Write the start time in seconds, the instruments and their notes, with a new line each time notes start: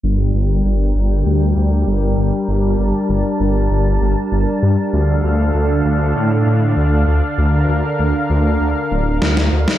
0.03 detuned saw bass G1, analog synth pad G3 D4 A#4 G5
0.34 detuned saw bass G1
0.65 detuned saw bass G1
0.95 detuned saw bass G1
1.26 detuned saw bass D2
1.57 detuned saw bass D2
1.87 detuned saw bass G1
2.18 detuned saw bass G1
2.48 detuned saw bass G1, analog synth pad A5
2.79 detuned saw bass G1
3.09 detuned saw bass G1
3.40 detuned saw bass G1
3.71 detuned saw bass G1
4.01 detuned saw bass G1
4.32 detuned saw bass G1
4.63 detuned saw bass G2
4.93 detuned saw bass D2, analog synth pad D3 A4 F5
5.24 detuned saw bass D2
5.54 detuned saw bass D2
5.85 detuned saw bass D2
6.15 detuned saw bass A2
6.46 detuned saw bass A2
6.77 detuned saw bass D2
7.07 detuned saw bass D2
7.38 detuned saw bass D2, analog synth pad D3 A#4
7.69 detuned saw bass D2
7.99 detuned saw bass D2
8.30 detuned saw bass D2
8.61 detuned saw bass D2
8.91 detuned saw bass D1
9.22 detuned saw bass D2, snare
9.37 snare
9.52 detuned saw bass D2
9.68 snare